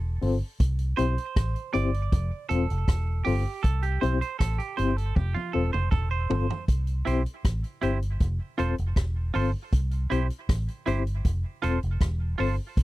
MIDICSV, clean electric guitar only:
0, 0, Header, 1, 2, 480
1, 0, Start_track
1, 0, Key_signature, 0, "major"
1, 0, Tempo, 760456
1, 378, Time_signature, 4, 2, 24, 8
1, 8098, End_track
2, 0, Start_track
2, 0, Title_t, "Clean electric guitar"
2, 0, Program_c, 0, 27
2, 613, Note_on_c, 0, 72, 107
2, 1093, Note_off_c, 0, 72, 0
2, 1095, Note_on_c, 0, 74, 107
2, 1551, Note_off_c, 0, 74, 0
2, 1572, Note_on_c, 0, 69, 101
2, 2049, Note_on_c, 0, 67, 100
2, 2069, Note_off_c, 0, 69, 0
2, 2290, Note_on_c, 0, 69, 96
2, 2301, Note_off_c, 0, 67, 0
2, 2415, Note_on_c, 0, 67, 92
2, 2423, Note_off_c, 0, 69, 0
2, 2532, Note_on_c, 0, 72, 99
2, 2538, Note_off_c, 0, 67, 0
2, 2652, Note_off_c, 0, 72, 0
2, 2659, Note_on_c, 0, 72, 91
2, 2768, Note_off_c, 0, 72, 0
2, 2770, Note_on_c, 0, 69, 99
2, 2894, Note_on_c, 0, 67, 83
2, 2903, Note_off_c, 0, 69, 0
2, 3011, Note_on_c, 0, 72, 93
2, 3017, Note_off_c, 0, 67, 0
2, 3135, Note_off_c, 0, 72, 0
2, 3135, Note_on_c, 0, 69, 87
2, 3253, Note_off_c, 0, 69, 0
2, 3253, Note_on_c, 0, 67, 85
2, 3374, Note_on_c, 0, 65, 84
2, 3381, Note_off_c, 0, 67, 0
2, 3485, Note_off_c, 0, 65, 0
2, 3492, Note_on_c, 0, 69, 85
2, 3614, Note_off_c, 0, 69, 0
2, 3617, Note_on_c, 0, 72, 92
2, 3727, Note_off_c, 0, 72, 0
2, 3732, Note_on_c, 0, 69, 94
2, 3851, Note_off_c, 0, 69, 0
2, 3856, Note_on_c, 0, 72, 92
2, 4190, Note_off_c, 0, 72, 0
2, 4451, Note_on_c, 0, 64, 81
2, 4458, Note_on_c, 0, 67, 87
2, 4464, Note_on_c, 0, 72, 87
2, 4552, Note_off_c, 0, 64, 0
2, 4555, Note_off_c, 0, 67, 0
2, 4558, Note_off_c, 0, 72, 0
2, 4933, Note_on_c, 0, 64, 80
2, 4940, Note_on_c, 0, 67, 79
2, 4945, Note_on_c, 0, 72, 77
2, 5033, Note_off_c, 0, 64, 0
2, 5037, Note_off_c, 0, 67, 0
2, 5039, Note_off_c, 0, 72, 0
2, 5415, Note_on_c, 0, 65, 78
2, 5421, Note_on_c, 0, 69, 81
2, 5426, Note_on_c, 0, 72, 83
2, 5514, Note_off_c, 0, 65, 0
2, 5517, Note_off_c, 0, 69, 0
2, 5520, Note_off_c, 0, 72, 0
2, 5894, Note_on_c, 0, 65, 91
2, 5901, Note_on_c, 0, 69, 99
2, 5906, Note_on_c, 0, 72, 98
2, 5994, Note_off_c, 0, 65, 0
2, 5997, Note_off_c, 0, 69, 0
2, 6000, Note_off_c, 0, 72, 0
2, 6376, Note_on_c, 0, 64, 81
2, 6381, Note_on_c, 0, 67, 87
2, 6386, Note_on_c, 0, 72, 88
2, 6475, Note_off_c, 0, 64, 0
2, 6478, Note_off_c, 0, 67, 0
2, 6480, Note_off_c, 0, 72, 0
2, 6855, Note_on_c, 0, 64, 83
2, 6862, Note_on_c, 0, 67, 82
2, 6866, Note_on_c, 0, 72, 91
2, 6955, Note_off_c, 0, 64, 0
2, 6958, Note_off_c, 0, 67, 0
2, 6961, Note_off_c, 0, 72, 0
2, 7336, Note_on_c, 0, 65, 86
2, 7342, Note_on_c, 0, 69, 94
2, 7348, Note_on_c, 0, 72, 84
2, 7435, Note_off_c, 0, 65, 0
2, 7438, Note_off_c, 0, 69, 0
2, 7441, Note_off_c, 0, 72, 0
2, 7815, Note_on_c, 0, 65, 91
2, 7822, Note_on_c, 0, 69, 88
2, 7828, Note_on_c, 0, 72, 96
2, 7915, Note_off_c, 0, 65, 0
2, 7919, Note_off_c, 0, 69, 0
2, 7922, Note_off_c, 0, 72, 0
2, 8098, End_track
0, 0, End_of_file